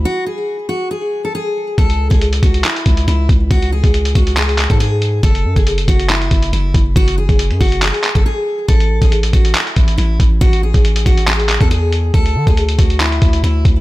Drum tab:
HH |----------------|xx-xxxxxxxxxx-x-|xx-xxxxxxxxxx-x-|xx-xxxxxxxxxx-x-|
CP |----------------|--------x-------|--------x-x-----|--------x-------|
BD |----------------|o--o--o---o---o-|o--o--o----o----|o--o--o---o---o-|

HH |xx-xxxoxxxxx----|xx-xxxxxxxxxx-x-|xx-xxxxxxxxxx-x-|xx-xxxxxxxxxx-x-|
CP |--------x-x-----|--------x-------|--------x-x-----|--------x-------|
BD |o--o--o----o----|o--o--o---o---o-|o--o--o----o----|o--o--o---o---o-|